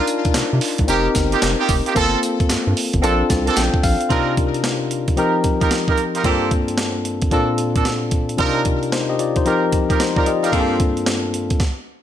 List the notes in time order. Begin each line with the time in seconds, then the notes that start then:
Already playing: D4 D#4 F4 A#4
0.07 closed hi-hat, tambourine
0.25 C3, kick, closed hi-hat
0.34 C3, snare, clap, closed hi-hat, tambourine
0.53 C3
0.61 clap, open hi-hat
0.78 C2, kick, closed hi-hat
0.88 F1 A#3 C4 D#4 F4 G4 A#4, closed hi-hat, tambourine
1.15 G1, kick, snare, closed hi-hat, tambourine
1.32 A#3 D#4 F4 G4, closed hi-hat
1.42 F1, snare, clap, closed hi-hat, tambourine
1.59 A#3 D#4 F4 G4
1.69 F1, kick, open hi-hat, tambourine
1.86 A#3 D#4 F4 G4, closed hi-hat
1.95 G1 A#3 C4 F4 A4, kick, closed hi-hat, tambourine
2.23 closed hi-hat, tambourine
2.40 G2, kick, closed hi-hat
2.50 G2, snare, clap, closed hi-hat, tambourine
2.67 G2
2.77 open hi-hat
2.93 G1, kick, closed hi-hat
3.02 A#1 A#3 C4 D4 F4 A4, closed hi-hat, tambourine
3.30 C2 A5, kick, snare, closed hi-hat, tambourine
3.46 A#3 C4 D4 A4, closed hi-hat
3.57 A#1 G5, snare, clap, closed hi-hat, tambourine
3.74 kick
3.83 A#1 F5, kick, open hi-hat, tambourine
4.01 closed hi-hat
4.10 C3 C4 D4 D#4 F4 G4 A#4, kick, closed hi-hat
4.37 kick, closed hi-hat
4.54 closed hi-hat
4.64 snare, closed hi-hat
4.91 closed hi-hat
5.08 kick, closed hi-hat
5.16 F3 C4 D#4 F4 G4 A#4, closed hi-hat
5.44 kick, closed hi-hat
5.61 D#4 F4 G4 A#4, kick, closed hi-hat
5.71 snare, closed hi-hat
5.88 D#4 F4 G4 A#4, kick
5.98 closed hi-hat
6.15 D#4 F4 G4 A#4, closed hi-hat
6.23 G2 A#3 C4 D4 F4 G4 A4, kick, closed hi-hat
6.51 kick, closed hi-hat
6.68 closed hi-hat
6.78 snare, closed hi-hat
7.05 closed hi-hat
7.22 kick, closed hi-hat
7.31 A#2 A#3 C4 D4 F4 A4, kick, closed hi-hat
7.58 closed hi-hat
7.75 A#3 C4 D4 A4, kick, closed hi-hat
7.85 snare, closed hi-hat
8.11 kick, closed hi-hat
8.29 closed hi-hat
8.37 C3 C4 D4 D#4 F4 G4 A#4, kick, closed hi-hat
8.65 kick, closed hi-hat
8.83 closed hi-hat
8.92 D#4 C5, snare, closed hi-hat
9.09 G4 D#5
9.19 F4 D5, closed hi-hat
9.36 D#4 C5, kick, closed hi-hat
9.45 F3 C4 D#4 F4 G4 A#4, closed hi-hat
9.72 kick, closed hi-hat
9.90 D#4 F4 G4 A#4, kick, closed hi-hat
10.00 D#4 C5, snare, closed hi-hat
10.16 D#4 F4 G4 A#4 D5, kick
10.26 G4 D#5, closed hi-hat
10.43 D#4 F4 G4 A4 A#4 F5, closed hi-hat
10.52 G2 A#3 C4 D4 F4 G4 G#4 A4, kick, closed hi-hat
10.60 A4
10.80 kick, closed hi-hat
10.97 closed hi-hat
11.06 snare, closed hi-hat
11.34 closed hi-hat
11.50 kick, closed hi-hat
11.60 kick, snare